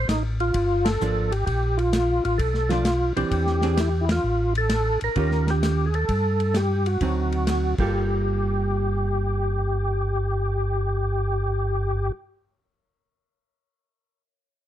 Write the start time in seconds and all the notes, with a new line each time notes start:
0.08 A1 D#4, snare, hi-hat pedal, ride
0.40 F4, ride
0.54 G1, kick, ride
0.85 A4, snare, ride
1.01 G#1 F3 A#3 D4, hi-hat pedal
1.31 G4, ride
1.46 A#1 G4, kick, ride
1.77 F4, ride
1.93 snare, hi-hat pedal, ride
2.25 A1 F4, ride
2.38 B1 A4, kick, ride
2.54 snare
2.69 F3 A3 D4 F4, snare, ride
2.85 snare, hi-hat pedal, ride
3.17 B1 E3 C4 D4 G4, ride
3.31 E2, kick, ride
3.47 snare
3.61 E3 C4 D4 G#4, snare, ride
3.77 E4, snare, hi-hat pedal, ride
4.01 E4
4.09 F4, snare, ride
4.24 A1
4.55 A4, ride
4.69 snare, hi-hat pedal, ride
5.01 A1 A#4, ride
5.16 D#2 D#3 C#4 F4 G4, kick, ride
5.31 snare
5.47 G4, snare, ride
5.63 snare, hi-hat pedal, ride
5.86 G#4
5.94 A4, ride
6.09 G2, kick, ride
6.40 ride
6.54 G4, snare, hi-hat pedal, ride
6.86 F#4, ride
7.01 D2 D3 F#3 C4 D#4, kick, ride
7.32 ride
7.47 snare, hi-hat pedal, ride
7.78 G1 G3 A#3 F4 G4 A4, kick, crash